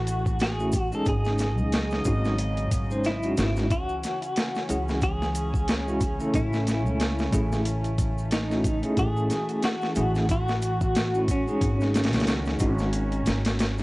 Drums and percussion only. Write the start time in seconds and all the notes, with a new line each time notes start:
0.07 closed hi-hat, maracas
0.26 kick, maracas
0.39 snare, closed hi-hat, maracas
0.60 maracas
0.72 kick, closed hi-hat, maracas
0.92 maracas
1.06 kick, closed hi-hat, maracas
1.25 snare, maracas
1.38 snare, closed hi-hat, maracas
1.58 maracas
1.72 snare, closed hi-hat, maracas
1.91 snare, maracas
2.05 kick, closed hi-hat, maracas
2.25 snare, maracas
2.38 closed hi-hat, maracas
2.57 closed hi-hat, maracas
2.71 kick, closed hi-hat, maracas
2.91 maracas
3.04 snare, closed hi-hat, maracas
3.23 closed hi-hat, maracas
3.37 snare, closed hi-hat, maracas
3.56 snare, maracas
3.70 kick, closed hi-hat, maracas
3.89 maracas
4.03 snare, closed hi-hat, maracas
4.22 closed hi-hat, maracas
4.36 snare, closed hi-hat, maracas
4.55 snare, maracas
4.69 closed hi-hat, maracas
4.88 snare, maracas
5.01 kick, closed hi-hat, maracas
5.22 snare, maracas
5.35 closed hi-hat, maracas
5.54 kick, maracas
5.68 snare, closed hi-hat, maracas
5.88 maracas
6.01 kick, closed hi-hat, maracas
6.20 maracas
6.34 kick, closed hi-hat, maracas
6.53 snare, maracas
6.67 snare, closed hi-hat, maracas
6.86 maracas
7.00 snare, closed hi-hat, maracas
7.18 snare, maracas
7.32 kick, closed hi-hat, maracas
7.52 snare, maracas
7.65 closed hi-hat, maracas
7.84 closed hi-hat, maracas
7.98 kick, closed hi-hat, maracas
8.18 maracas
8.31 snare, closed hi-hat, maracas
8.51 snare, maracas
8.64 kick, closed hi-hat, maracas
8.83 closed hi-hat, maracas
8.97 kick, closed hi-hat, maracas
9.17 maracas
9.30 snare, closed hi-hat, maracas
9.49 closed hi-hat, maracas
9.63 snare, closed hi-hat, maracas
9.81 snare, maracas
9.95 closed hi-hat, maracas
10.15 snare, maracas
10.29 kick, closed hi-hat, maracas
10.48 snare, maracas
10.62 closed hi-hat, maracas
10.81 kick, maracas
10.95 snare, closed hi-hat, maracas
11.14 maracas
11.28 kick, closed hi-hat, maracas
11.48 maracas
11.61 kick, closed hi-hat, maracas
11.81 snare, maracas
11.94 snare, closed hi-hat, maracas
12.04 snare, closed hi-hat
12.13 snare, closed hi-hat, maracas
12.20 snare, closed hi-hat
12.27 snare, closed hi-hat, maracas
12.46 snare, maracas
12.59 kick, closed hi-hat, maracas
12.78 snare, maracas
12.93 closed hi-hat, maracas
13.12 closed hi-hat, maracas
13.26 snare, closed hi-hat, maracas
13.45 snare, closed hi-hat, maracas
13.59 snare, closed hi-hat, maracas
13.78 snare, maracas